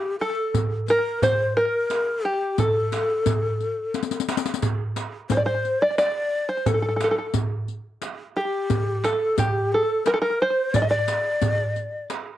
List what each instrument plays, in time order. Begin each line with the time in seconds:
Already playing: ney G4, five-string banjo G4
0.20 ney A4, five-string banjo A4
0.54 riq, darbuka dum
0.88 ney A#4, five-string banjo A#4, riq
1.22 five-string banjo C5, ney C5, riq, darbuka dum
1.57 five-string banjo A#4, ney C5, riq
1.61 ney A#4
1.90 riq, darbuka tek
2.25 five-string banjo G4, ney G4
2.58 ney A4, five-string banjo A4, riq, darbuka dum
2.92 riq, darbuka tek
3.26 riq, darbuka dum
3.60 riq, darbuka ka
3.94 riq, darbuka tek
4.03 riq
4.11 riq, darbuka ka
4.20 riq
4.28 riq, darbuka tek
4.37 riq
4.46 riq, darbuka ka
4.54 riq
4.62 riq, darbuka dum
4.96 riq, darbuka tek
5.30 ney C5, five-string banjo C5, riq, darbuka dum
5.37 five-string banjo D5
5.44 ney C5, five-string banjo C5
5.65 riq
5.82 ney D5, five-string banjo D5
5.98 five-string banjo D5, ney D5, riq, darbuka tek
6.49 five-string banjo C5, ney C5
6.66 five-string banjo A4, ney A4, riq, darbuka dum
6.74 five-string banjo A4
6.82 five-string banjo A4
6.89 five-string banjo A4
6.96 five-string banjo A4
7.00 five-string banjo A4, riq, darbuka tek
7.11 five-string banjo A4
7.18 five-string banjo A4
7.34 riq, darbuka dum
7.68 riq
8.02 riq, darbuka tek
8.36 five-string banjo G4, ney A4
8.41 ney G4
8.70 riq, darbuka dum
9.04 five-string banjo A4, ney A4, riq, darbuka tek
9.37 ney G4, five-string banjo G4, riq, darbuka dum
9.72 ney A4, five-string banjo A4
10.06 ney A#4, five-string banjo A#4, riq, darbuka tek
10.14 five-string banjo A4
10.21 ney A#4, five-string banjo A#4
10.41 ney C5, five-string banjo C5
10.74 ney D5, five-string banjo D5, riq, darbuka dum
10.82 five-string banjo D#5
10.88 ney D5, five-string banjo D5
11.08 riq, darbuka tek
11.42 riq, darbuka dum
11.76 riq, darbuka ka
12.10 riq, darbuka tek